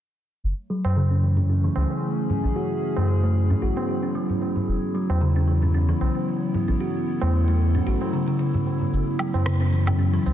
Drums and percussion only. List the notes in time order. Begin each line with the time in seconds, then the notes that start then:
0.85 tabla na
1.11 tabla tin
1.37 tabla ge
1.76 tabla na
1.91 tabla tin
2.30 tabla ge
2.96 tabla na
3.23 tabla tin
3.51 tabla ge
3.77 tabla na
4.02 tabla na
4.16 tabla tin
4.30 tabla ge
4.42 tabla na
4.56 tabla ge
5.10 tabla na
5.36 tabla tin
5.62 tabla ge
6.01 tabla na
6.16 tabla tin
6.54 tabla ge
7.21 tabla na
7.49 tabla tin
7.76 tabla ge
8.02 tabla na
8.29 tabla na
8.41 tabla tin
8.54 tabla ge
8.67 tabla na
8.81 tabla ge
8.93 shaker
9.19 low woodblock, shaker
9.34 tabla na, shaker
9.46 cross-stick, shaker
9.60 tabla tin
9.73 shaker
9.87 tabla ge, low woodblock, shaker
10.00 shaker
10.26 tabla na, shaker